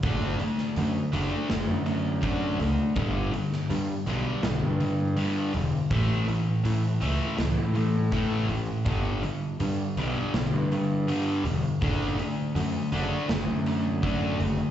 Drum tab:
HH |o-o-o-o-o-o-o-o-|o-o-o-o-o-o-o-o-|o-o-o-o-o-o-o-o-|o-o-o-o-o-o-o-o-|
SD |---o----o-------|---o----o-------|--------o-------|--------o-------|
BD |o-----------o---|o---------------|o-----------o---|o---------------|

HH |o-o-o-o-o-o-o-o-|
SD |--------o-------|
BD |o-----------o---|